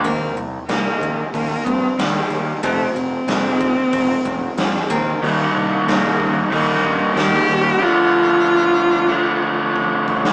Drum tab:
HH |o---o---o---o---|o---o---o---o---|o---o---o---o---|----------------|
SD |----o-------o---|----o-------oo--|----o-------o---|---------------o|
BD |o-----o-o-o-----|o-----o-o-o---o-|------o-o-o-----|------------o-o-|